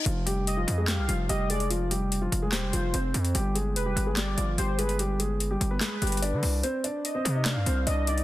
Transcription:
<<
  \new Staff \with { instrumentName = "Soft synth lead" } { \time 4/4 \key f \dorian \tempo 4 = 146 r4 ees''4 f''4 ees''8 d''8 | r2 c''2 | r4 b'4 d''4 c''8 b'8 | r2 b'2 |
r4 ees''4 f''4 ees''8 d''8 | }
  \new Staff \with { instrumentName = "Grand piano" } { \time 4/4 \key f \dorian <f f'>8 <g g'>8. <f f'>8 <aes aes'>16 <g g'>8 <f f'>8 <g g'>8 <aes aes'>8 | <f f'>8 <g g'>8. <f f'>8 <aes aes'>16 <g g'>8 <f f'>8 <c' c''>4 | <g g'>8 <aes aes'>8. <g g'>8 <aes aes'>16 <g g'>8 <f f'>8 <g g'>8 <aes aes'>8 | <g g'>8 <aes aes'>8. <g g'>8 <b b'>16 <aes aes'>8 <g g'>8 <d' d''>4 |
<c' c''>8 <d' d''>8. <c' c''>8 <ees' ees''>16 <d' d''>8 <c' c''>8 <d' d''>8 <ees' ees''>8 | }
  \new Staff \with { instrumentName = "808-style bass" } { \clef bass \time 4/4 \key f \dorian f,,4. f,8. c,16 f,,8 f,,4~ | f,,4. f,,8 ees,,16 f,,16 f,,8 f,,8 f,8 | g,,4 f,,8 g,,4 g,,8 g,,4~ | g,,4. g,,8 r8 g,,8. d16 c,8 |
r4. c8. g,16 c,8 c,4 | }
  \new DrumStaff \with { instrumentName = "Drums" } \drummode { \time 4/4 hh8 hh8 hh8 hh8 <hc hh sn>8 hh8 hh8 hh16 hh16 | hh8 hh8 hh8 hh8 <hc hh sn>8 hh8 hh8 hh16 hh16 | hh8 hh8 hh8 hh8 <hc hh sn>8 hh8 hh8 hh16 hh16 | hh8 hh8 hh8 hh8 <hc hh sn>8 hh32 hh32 hh32 hh32 hh8 hho8 |
hh8 hh8 hh8 hh8 <hc hh sn>8 hh8 hh8 hh16 hh16 | }
>>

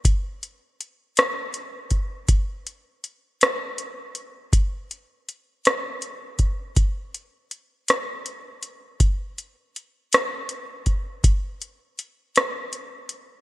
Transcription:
\new DrumStaff \with { instrumentName = "Drums" } \drummode { \time 6/8 \tempo 4. = 54 <hh bd>8 hh8 hh8 <hh ss>8 hh8 <hh bd>8 | <hh bd>8 hh8 hh8 <hh ss>8 hh8 hh8 | <hh bd>8 hh8 hh8 <hh ss>8 hh8 <hh bd>8 | <hh bd>8 hh8 hh8 <hh ss>8 hh8 hh8 |
<hh bd>8 hh8 hh8 <hh ss>8 hh8 <hh bd>8 | <hh bd>8 hh8 hh8 <hh ss>8 hh8 hh8 | }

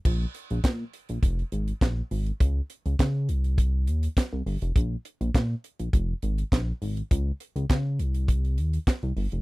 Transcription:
<<
  \new Staff \with { instrumentName = "Analog synth bass" } { \clef bass \time 4/4 \key c \phrygian \tempo 4 = 102 bes,,8 r16 bes,,16 bes,8 r16 bes,,16 f,,8 aes,,8 bes,,8 aes,,8 | des,8 r16 des,16 des8 c,4 ees,8 r16 c,16 g,,16 f,,16 | bes,,8 r16 bes,,16 bes,8 r16 bes,,16 f,,8 aes,,8 bes,,8 aes,,8 | des,8 r16 des,16 des8 c,4 ees,8 r16 c,16 g,,16 f,,16 | }
  \new DrumStaff \with { instrumentName = "Drums" } \drummode { \time 4/4 <cymc bd>8 hh16 hh16 <hc hh bd sn>8 hh16 hh16 <hh bd>16 hh16 hh16 hh16 <hc hh bd sn>8 hho16 hh16 | <hh bd>8 hh16 hh16 <hc hh bd sn>8 hh16 hh16 <hh bd>8 hh16 hh16 <hc hh bd sn>8 hho16 hh16 | <hh bd>8 hh16 hh16 <hc hh bd sn>8 hh16 hh16 <hh bd>8 hh16 hh16 <hc hh bd sn>8 hho16 hh16 | <hh bd>8 hh16 hh16 <hc hh bd sn>8 hh16 hh16 <hh bd>16 hh16 hh16 hh16 <hc hh bd sn>16 hh16 hho16 hh16 | }
>>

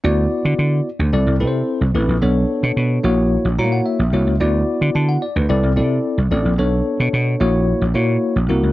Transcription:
<<
  \new Staff \with { instrumentName = "Tine electric piano" } { \time 4/4 \key d \major \tempo 4 = 110 << { r1 | r2 r8 ais''16 fis''16 e''4 | r4 a''16 fis''16 d''16 b'8 r4. r16 | r1 | } \\ { <b e' fis' d''>4. r8 <c' e' a' d''>8 <c' e' a' b' c''>4 <c' e' a' b'>8 | <b d' a' cis''>4. <ais e' fis' cis''>4 <g ais e' fis' cis''>4 <ais e' fis' cis''>8 | <b e' fis' d''>4. r8 <c' e' a' d''>8 <c' e' a' d''>4 <c' e' a' d''>8 | <b d' a' cis''>4. <ais e' fis' cis''>4 <ais e' fis' cis''>4 <ais e' fis' ais'>8 | } >> }
  \new Staff \with { instrumentName = "Slap bass" } { \clef bass \time 4/4 \key d \major d,8 r16 d16 d8 r16 d,16 c,16 c,16 c8 r16 c,16 a,,16 ais,,16 | b,,8 r16 b,16 b,8 ais,,8. ais,,16 ais,8 r16 ais,,16 c,16 cis,16 | d,8 r16 d16 d8 r16 d,16 c,16 c,16 c8 r16 c,16 a,,16 ais,,16 | b,,8 r16 b,16 b,8 ais,,8. ais,,16 ais,8 r16 ais,,16 c,16 cis,16 | }
>>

